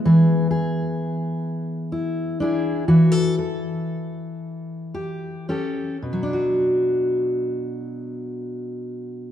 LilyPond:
\new Staff \with { instrumentName = "Steel-string acoustic guitar" } { \time 6/8 \key b \minor \tempo 4. = 39 << { <b gis'>8 gis'4. e'8 <d' e' gis'>8 | fis'16 a'16 a'4. g'8 <cis' g' a'>8 | <fis d' fis'>2. | } \\ { e2. | e2. | b,2. | } >> }